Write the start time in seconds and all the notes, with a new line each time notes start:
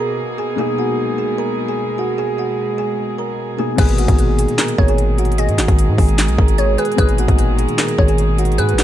Already playing: B2 A#3 D#4 G#4
0.00 A#4 A#5
0.38 G#4 G#5
0.56 B2 G#3 A#3 D#4 G#4 G#5
0.61 G#4
0.78 F#4 F#5
1.18 G#4 G#5
1.38 A#4 A#5
1.68 G#4 G#5
1.98 F#4 F#5
2.18 G#4 G#5
2.38 F#4 F#5
2.78 G#4 G#5
3.18 A#4 A#5
3.57 B2 A#3 D#4 G#4 G#5
3.76 G#1 A#2 B2 D#4 G#4 B4 G#5, kick, closed hi-hat, crash
3.81 G#4
3.89 closed hi-hat
3.98 F#4 F#5, closed hi-hat
4.08 G#1, kick, closed hi-hat
4.19 closed hi-hat
4.39 G#4 G#5, closed hi-hat
4.48 closed hi-hat
4.58 A#4 A#5, snare, clap, closed hi-hat
4.68 closed hi-hat
4.78 G#1 C#5, kick
4.88 G#4 G#5, closed hi-hat
4.98 closed hi-hat
5.18 F#4 F#5, closed hi-hat
5.25 closed hi-hat
5.32 closed hi-hat
5.38 G#4 D#5 G#5, closed hi-hat
5.48 G#2, closed hi-hat
5.58 G#1 F#4 F#5, snare, clap, closed hi-hat
5.68 G#1, kick, closed hi-hat
5.79 closed hi-hat
5.88 G#2
5.98 G#1 G#4 G#5, kick, open hi-hat
6.09 closed hi-hat
6.18 snare, clap, closed hi-hat
6.28 B1, closed hi-hat
6.38 G#1 A#4 A#5, kick
6.48 closed hi-hat
6.58 C#5, closed hi-hat
6.78 G#4 B4 G#5, closed hi-hat
6.85 closed hi-hat
6.92 closed hi-hat
6.96 G#1 A#2 B2 D#4 G#4 B4 G#5, kick, closed hi-hat
7.01 G#4
7.09 closed hi-hat
7.18 F#4 F#5, closed hi-hat
7.28 G#1, kick, closed hi-hat
7.39 closed hi-hat
7.58 G#4 G#5, closed hi-hat
7.68 closed hi-hat
7.78 A#4 A#5, snare, clap, closed hi-hat
7.88 closed hi-hat
7.98 G#1 C#5, kick
8.08 G#4 G#5, closed hi-hat
8.18 closed hi-hat
8.38 F#4 F#5, closed hi-hat
8.45 closed hi-hat
8.52 closed hi-hat
8.58 G#2 G#4 B4 G#5, closed hi-hat
8.69 closed hi-hat
8.73 G#1
8.78 F#4 F#5, snare, clap, closed hi-hat